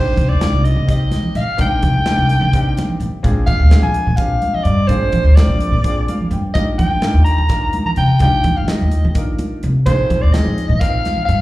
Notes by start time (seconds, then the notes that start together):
Already playing: A#3 C4 D4 D#4 G4 C5
0.05 muted upright bass stroke
0.16 C3, kick, closed hi-hat, low conga
0.28 D#2 D5
0.41 A#3 C4 D4 D#4 F4, muted upright bass stroke, snare, closed hi-hat, low conga
0.52 C2, high conga
0.65 D#5, closed hi-hat
0.76 C3
0.86 A#3 C4 D#4 G4, kick, closed hi-hat
0.91 D#5
1.11 snare, closed hi-hat, high conga
1.23 low conga
1.35 A#2 F5, closed hi-hat
1.47 low conga
1.57 C2 A#3 C4 D4 D#4 A#4 G5, kick, closed hi-hat, high conga, low conga
1.71 muted upright bass stroke
1.82 C3, kick, closed hi-hat, low conga
1.94 D#2
2.05 A#3 C4 D4 D#4 A#4, muted upright bass stroke, snare, closed hi-hat, low conga
2.16 C2, high conga
2.29 closed hi-hat
2.41 C3, low conga
2.53 A#3 C4 D4 D#4 G4, kick, closed hi-hat
2.77 snare, closed hi-hat, high conga
2.90 low conga
3.00 A#2, closed hi-hat
3.14 low conga
3.23 A#1 A#3 C4 D4 F4 G#4, kick, closed hi-hat, high conga, low conga
3.36 muted upright bass stroke
3.46 A#2 F5, kick, closed hi-hat, low conga
3.60 D2
3.69 A#3 C4 D4 F4 G#4, muted upright bass stroke, snare, closed hi-hat
3.83 A#1 G#5, high conga
3.94 closed hi-hat
4.07 A#2, low conga
4.16 A#3 C4 D4 F5, kick, closed hi-hat
4.20 F4 G4
4.42 closed hi-hat, high conga
4.54 D#5, low conga
4.63 G2 D5, closed hi-hat
4.78 low conga
4.87 A#1 A#3 C4 D4 F4 G#4 C5, kick, closed hi-hat, high conga
5.00 muted upright bass stroke
5.12 A#2, kick, closed hi-hat, low conga
5.24 D2
5.35 A#3 C4 D4 F4 A#4 D5, muted upright bass stroke, snare, closed hi-hat
5.48 A#1, high conga
5.60 closed hi-hat, low conga
5.72 A#2, low conga
5.84 A#3 C4 D4 F4 G#4, kick, closed hi-hat
6.08 F5, closed hi-hat, high conga
6.21 low conga
6.31 G2 G5, closed hi-hat
6.54 D#2 A#3 D4 D#4 F4 G4 D#5, kick, closed hi-hat, high conga, low conga
6.68 muted upright bass stroke
6.78 D#3 G5, kick, closed hi-hat, low conga
6.91 G2
7.02 A#3 D4 D#4 F4 A#4, muted upright bass stroke, snare, closed hi-hat, low conga
7.14 D#2, high conga
7.24 A#5, closed hi-hat
7.38 D#3, low conga
7.49 A#3 D4 D#4 F4 A#4, kick, snare, closed hi-hat
7.73 closed hi-hat, high conga
7.86 A#5, low conga
7.96 C3 G5, closed hi-hat
8.09 low conga
8.19 D#2 A#3 D4 D#4 F4 G4 G5, kick, closed hi-hat, high conga, low conga
8.33 muted upright bass stroke
8.44 D#3, kick, closed hi-hat, low conga
8.56 G2 F5
8.68 A#3 D#4 F4 G4 D#5, muted upright bass stroke, snare, closed hi-hat, low conga
8.81 D#2, high conga
8.91 closed hi-hat
9.04 D#3, low conga
9.15 A#3 D4 D#4 F4 A#4, kick, closed hi-hat
9.38 closed hi-hat, high conga
9.63 C3, closed hi-hat
9.75 low conga
9.85 A#1 A#3 C4 D#4 F4 G#4 C5, kick, closed hi-hat, high conga, low conga
9.99 muted upright bass stroke
10.10 A#2, kick, closed hi-hat, low conga
10.22 D#2 D5
10.33 A#3 C4 D#4 F4 D#5, snare, closed hi-hat, low conga
10.37 G#4
10.46 A#1, high conga
10.58 closed hi-hat
10.69 A#2, low conga
10.80 A#3 C4 D#4 F4 A#4 F5, kick, closed hi-hat
11.05 snare, closed hi-hat, high conga
11.17 low conga
11.25 G2 F5, closed hi-hat